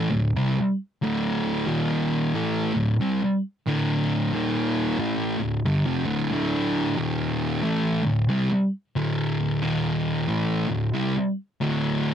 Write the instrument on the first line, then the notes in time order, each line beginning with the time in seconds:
distorted electric guitar
0.10 D2 A2
0.36 C3 G3
1.02 D2 A2 D3
1.67 D#2 A#2 D#3
2.34 A2 E3 A3
2.74 D2 A2
3.01 C3 G3
3.67 D2 A2 D3
4.32 D#2 A#2 D#3
4.99 A2 E3 A3
5.39 D2 A2
5.65 G2 D3
5.86 F2 C3
6.05 D2 A2 D3
6.31 D2 A2 D3
6.97 D#2 A#2 D#3
7.63 A2 E3 A3
8.03 D2 A2
8.29 C3 G3
8.96 D2 A2 D3
9.62 D#2 A#2 D#3
10.28 A2 E3 A3
10.68 D2 A2
10.94 C3 G3
11.61 D2 A2 D3